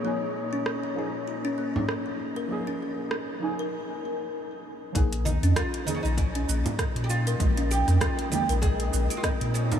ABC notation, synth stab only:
X:1
M:4/4
L:1/8
Q:"Swing 16ths" 1/4=98
K:Bbm
V:1 name="Synth stab"
[F,B,EA]3 [F,B,EA]4- [F,B,EA] | [F,B,EA]3 [F,B,EA]4- [F,B,EA] | [F,B,EA]3 [F,B,EA]4- [F,B,EA] | [F,A,B,E]3 [F,A,B,E]4- [F,A,B,E] |]